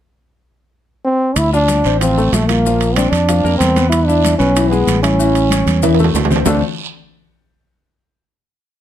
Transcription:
1.05 1.39 C4 medium
1.36 1.81 D2 medium
1.36 1.53 E4 medium
1.36 high conga soft
1.36 high timbale medium
1.36 long guiro medium
1.36 maracas medium
1.53 1.98 D4 medium
1.53 1.79 F4 medium
1.53 1.79 F5 medium
1.53 high conga soft
1.53 maracas soft
1.68 high conga medium
1.68 high timbale medium
1.68 short guiro medium
1.68 maracas medium
1.84 2.29 A1 medium
1.84 1.98 C4 medium
1.84 1.98 C5 medium
1.84 high conga soft
1.84 short guiro medium
1.84 maracas soft
2.00 2.14 F3 medium
2.00 2.35 C4 medium
2.00 2.14 F4 medium
2.00 high conga soft
2.00 high timbale medium
2.00 long guiro medium
2.00 maracas medium
2.17 2.43 A3 medium
2.17 2.43 A4 medium
2.17 high conga soft
2.17 maracas soft
2.32 3.06 A#1 medium
2.32 2.49 A3 medium
2.32 high conga medium
2.32 high timbale medium
2.32 low timbale medium
2.32 short guiro medium
2.32 maracas medium
2.48 2.96 A#3 medium
2.48 2.62 F4 medium
2.48 2.62 F5 medium
2.48 high conga medium
2.48 high timbale medium
2.48 short guiro medium
2.48 maracas soft
2.65 2.91 F3 medium
2.65 2.91 F4 medium
2.65 high conga soft
2.65 long guiro medium
2.65 maracas medium
2.81 high conga soft
2.81 high timbale medium
2.81 maracas soft
2.95 3.13 C4 medium
2.95 3.23 D4 medium
2.95 3.23 D5 medium
2.95 high conga medium
2.95 high timbale medium
2.95 short guiro medium
2.95 maracas medium
3.11 3.42 F2 medium
3.11 3.57 D4 medium
3.11 high conga soft
3.11 high timbale medium
3.11 short guiro medium
3.11 maracas soft
3.28 3.41 F3 medium
3.28 3.42 F4 medium
3.28 high conga soft
3.28 high timbale medium
3.28 long guiro medium
3.28 maracas medium
3.44 3.59 F2 medium
3.44 3.70 A#3 medium
3.44 3.70 A#4 medium
3.44 high conga soft
3.44 maracas soft
3.58 4.34 E2 medium
3.58 3.88 C4 medium
3.58 high conga medium
3.58 high timbale medium
3.58 short guiro medium
3.58 maracas medium
3.76 4.03 B3 medium
3.76 4.03 B4 medium
3.76 high conga medium
3.76 high timbale medium
3.76 short guiro medium
3.76 maracas soft
3.90 4.08 E4 medium
3.90 high conga soft
3.90 high timbale medium
3.90 long guiro medium
3.90 maracas medium
4.06 4.37 D4 medium
4.06 4.34 E4 medium
4.06 4.34 E5 medium
4.06 high conga soft
4.06 maracas soft
4.24 high conga medium
4.24 high timbale medium
4.24 short guiro medium
4.24 maracas medium
4.38 4.84 B1 medium
4.38 4.52 B3 medium
4.38 4.71 C#4 medium
4.38 4.52 B4 medium
4.38 high conga soft
4.38 short guiro medium
4.38 maracas soft
4.55 4.69 E3 medium
4.55 4.69 E4 medium
4.55 high conga soft
4.55 high timbale medium
4.55 long guiro medium
4.55 maracas medium
4.70 4.98 G#3 medium
4.70 5.02 B3 medium
4.70 4.97 G#4 medium
4.70 high conga soft
4.70 maracas soft
4.87 5.61 A1 medium
4.87 high conga medium
4.87 high timbale medium
4.87 short guiro medium
4.87 maracas medium
5.03 6.10 C#4 medium
5.03 5.16 E4 medium
5.03 5.16 E5 medium
5.03 high conga medium
5.03 high timbale medium
5.03 short guiro medium
5.03 maracas soft
5.19 5.45 E3 medium
5.19 5.45 E4 medium
5.19 high conga soft
5.19 long guiro medium
5.19 maracas medium
5.35 high conga soft
5.35 high timbale medium
5.35 maracas soft
5.50 5.77 C#4 medium
5.50 5.77 C#5 medium
5.50 high conga medium
5.50 high timbale medium
5.50 short guiro medium
5.50 maracas medium
5.66 6.11 E2 medium
5.66 high conga medium
5.66 high timbale medium
5.66 short guiro medium
5.66 maracas soft
5.83 5.96 E3 medium
5.83 5.96 E4 medium
5.83 low conga medium
5.83 high timbale medium
5.83 long guiro medium
5.83 maracas medium
5.94 high timbale medium
5.99 6.25 A3 medium
5.99 6.26 A4 medium
5.99 low conga medium
5.99 maracas soft
6.04 low timbale medium
6.14 6.42 D2 medium
6.14 low conga medium
6.14 low timbale medium
6.14 short guiro medium
6.14 maracas medium
6.25 low timbale loud
6.30 6.43 C4 medium
6.30 6.44 C5 medium
6.30 low conga medium
6.30 short guiro medium
6.30 maracas soft
6.36 low timbale medium
6.45 6.61 D2 medium
6.45 6.61 D3 medium
6.45 6.61 A3 medium
6.45 6.61 C4 medium
6.45 6.61 D4 medium
6.45 6.62 D4 medium
6.45 6.61 F4 medium
6.45 6.61 A4 medium
6.45 low conga medium
6.45 low timbale medium
6.45 long guiro medium
6.45 maracas medium

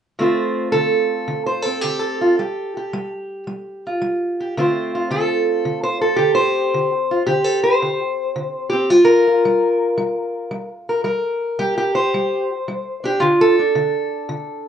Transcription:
0.19 0.70 D3 medium
0.19 2.35 A3 soft
0.19 1.65 C4 soft
0.19 1.81 F4 soft
0.19 0.72 C5 soft
0.72 1.24 D3 medium
0.72 1.45 A4 medium
1.28 1.79 D3 medium
1.46 1.62 C5 medium
1.62 2.37 C4 soft
1.62 1.98 A4 medium
1.81 2.34 D3 medium
1.81 2.19 G4 medium
1.99 3.09 A4 loud
2.21 2.39 F4 soft
2.39 2.89 G3 medium
2.39 2.75 G4 soft
2.77 4.39 G4 soft
2.93 3.43 G3 medium
3.47 3.97 G3 medium
3.87 4.58 F4 soft
4.02 4.52 G3 medium
4.40 4.54 G4 soft
4.57 5.07 D3 medium
4.57 6.71 A3 medium
4.57 8.72 C4 medium
4.57 4.94 F4 medium
4.57 5.11 C5 soft
4.95 6.16 F4 soft
5.10 5.61 D3 medium
5.10 5.83 A4 medium
5.65 6.15 D3 medium
5.83 6.01 C5 medium
6.01 6.34 A4 medium
6.16 6.69 D3 medium
6.16 6.89 G4 medium
6.35 7.44 C5 medium
6.74 7.24 D3 medium
7.11 7.26 F4 soft
7.26 7.78 D3 medium
7.26 7.99 G4 medium
7.44 7.62 A4 medium
7.63 8.89 C5 medium
7.82 8.32 D3 medium
8.36 8.86 D3 medium
8.70 8.90 C4 soft
8.70 8.90 G4 medium
8.90 9.40 G3 medium
8.90 9.26 F4 medium
9.05 10.68 A#4 loud
9.27 11.07 F4 soft
9.45 9.95 G3 medium
9.98 10.48 G3 medium
10.51 11.02 G3 medium
10.89 11.03 A#4 soft
11.04 11.55 G3 medium
11.04 11.95 A#4 medium
11.59 12.10 G3 medium
11.59 11.76 G4 loud
11.78 12.49 G4 medium
11.95 13.21 C5 medium
12.14 12.64 G3 medium
12.68 13.18 G3 medium
13.04 13.59 D4 soft
13.04 13.22 G4 medium
13.20 13.72 D3 medium
13.20 13.57 F4 medium
13.41 14.67 A4 loud
13.59 14.68 D4 soft
13.75 14.26 D3 medium
14.29 14.68 D3 medium

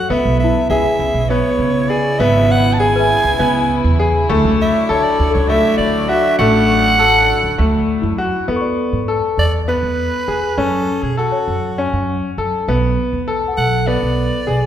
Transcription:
0.00 0.36 A4 soft
0.00 0.39 C#5 soft
0.00 0.11 F#5 medium
0.09 0.23 C#2 medium
0.09 4.25 C#3 medium
0.09 4.25 B3 medium
0.09 0.60 B3 medium
0.09 8.44 E4 medium
0.09 0.39 E5 medium
0.25 0.51 B1 medium
0.39 0.67 E5 medium
0.44 2.43 E4 medium
0.70 0.83 C#2 medium
0.70 1.20 G#4 medium
0.70 1.31 E5 medium
0.99 1.13 C#2 medium
1.14 1.41 B1 medium
1.29 1.80 B3 medium
1.29 1.91 C#5 medium
1.59 1.85 C#3 medium
1.89 2.15 G#4 medium
1.89 2.21 D5 medium
2.19 3.11 G#1 loud
2.19 2.70 B3 medium
2.19 2.53 E5 loud
2.51 2.75 F#5 medium
2.73 2.81 A5 medium
2.79 3.30 G#4 medium
2.79 3.99 G#5 loud
2.96 4.55 B4 medium
3.00 4.57 E5 soft
3.24 3.37 C#2 medium
3.39 3.79 C#2 medium
3.39 3.89 B3 medium
3.84 4.10 E2 medium
3.99 4.24 G#4 medium
4.29 4.42 D2 loud
4.29 8.44 F#3 medium
4.29 4.79 A3 loud
4.29 8.44 D4 medium
4.45 4.71 C#2 medium
4.61 4.92 E5 medium
4.89 5.02 D2 medium
4.89 5.39 A4 medium
4.89 5.05 C#5 medium
5.04 5.34 D5 medium
5.19 5.32 D2 medium
5.30 7.29 A4 medium
5.30 5.50 C#5 medium
5.35 5.61 C#2 medium
5.48 5.99 A3 medium
5.48 5.77 E5 loud
5.78 6.05 D3 medium
5.78 6.10 D5 medium
6.09 6.34 F#4 medium
6.09 6.38 E5 loud
6.39 7.31 A1 loud
6.39 6.89 A3 medium
6.39 7.85 F#5 loud
6.99 7.49 A4 medium
7.43 7.56 D2 medium
7.58 7.98 D2 medium
7.58 8.09 A3 medium
8.02 8.30 F#2 medium
8.02 8.74 E4 medium
8.18 8.43 F#4 medium
8.48 8.74 E2 medium
8.48 8.98 B3 medium
8.48 10.50 A4 soft
8.56 10.53 C#6 soft
8.61 10.55 D5 soft
8.93 9.19 G#2 medium
9.08 9.58 A4 medium
9.37 9.77 E2 medium
9.37 9.52 D5 medium
9.68 10.18 B3 medium
9.68 10.60 B4 medium
9.83 10.09 E2 medium
10.28 10.41 E2 medium
10.28 10.53 G#4 medium
10.57 10.84 F#2 medium
10.57 11.08 C#4 medium
10.57 11.05 A4 medium
11.03 11.29 B2 medium
11.03 11.18 G#4 medium
11.17 12.34 F#4 medium
11.17 11.68 A4 medium
11.32 12.93 C#5 medium
11.48 11.87 F#2 medium
11.78 12.28 C#4 medium
11.93 12.19 F#2 medium
12.38 12.51 F#2 medium
12.38 12.63 A4 medium
12.68 12.94 B1 medium
12.68 13.19 B3 medium
13.13 13.39 E2 medium
13.28 13.78 A4 medium
13.48 14.66 F#5 medium
13.53 14.66 A4 soft
13.57 13.97 B1 medium
13.57 13.89 F#5 medium
13.87 14.38 B3 medium
13.87 14.66 D5 medium
14.02 14.29 B1 medium
14.47 14.61 B1 medium
14.47 14.66 G#4 medium

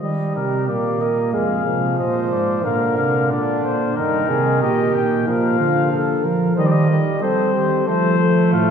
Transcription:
0.02 0.33 D#3 medium
0.02 0.64 G3 medium
0.02 0.33 D#5 medium
0.35 0.70 C3 medium
0.35 0.97 G4 medium
0.35 0.68 A#4 medium
0.67 1.36 A#2 medium
0.67 1.35 A#3 medium
0.67 1.03 D5 medium
1.01 1.33 A#4 medium
1.01 1.33 D#5 medium
1.33 1.67 F2 medium
1.33 1.66 G#3 medium
1.33 1.98 G#4 medium
1.33 1.98 F5 medium
1.67 1.99 C3 medium
1.67 2.66 F3 medium
1.98 2.32 A#2 medium
1.98 2.66 C5 medium
1.98 2.31 D#5 medium
2.31 2.65 G#2 medium
2.31 2.64 D5 medium
2.64 2.97 A#2 medium
2.64 3.97 D3 medium
2.64 3.30 A#4 medium
2.64 2.97 F5 medium
2.98 3.32 C3 medium
2.98 3.30 F5 medium
3.31 3.63 A#2 medium
3.31 3.95 D4 medium
3.31 3.63 D5 medium
3.64 3.96 A#2 medium
3.64 3.96 C5 medium
3.95 4.28 G2 medium
3.95 5.28 D#3 medium
3.95 4.30 D#4 medium
3.95 4.60 A#4 medium
4.29 4.63 C3 medium
4.29 4.63 G#4 medium
4.62 4.94 A#2 medium
4.62 5.27 G4 medium
4.62 4.94 D#5 medium
4.94 5.26 A#2 medium
4.94 5.26 G5 medium
5.27 5.59 A#2 medium
5.27 6.29 F3 medium
5.27 5.59 A#4 medium
5.27 6.28 F5 medium
5.59 6.23 D3 medium
5.59 5.91 F4 medium
5.92 6.25 A4 medium
6.24 6.57 F3 medium
6.24 6.55 A#4 medium
6.56 6.99 D#3 medium
6.56 6.88 G3 medium
6.56 6.98 C5 medium
6.56 6.68 D#5 medium
6.66 6.73 D5 medium
6.72 7.22 D#5 medium
6.90 7.24 G3 medium
7.22 7.84 G3 medium
7.22 7.88 C4 medium
7.22 7.56 A4 medium
7.22 7.87 C5 medium
7.54 7.86 G4 medium
7.87 8.55 F3 medium
7.87 8.71 A3 medium
7.87 8.18 A4 medium
7.87 8.52 C5 medium
8.19 8.50 A4 medium
8.51 8.71 A2 medium
8.51 8.71 F4 medium
8.51 8.71 F5 medium

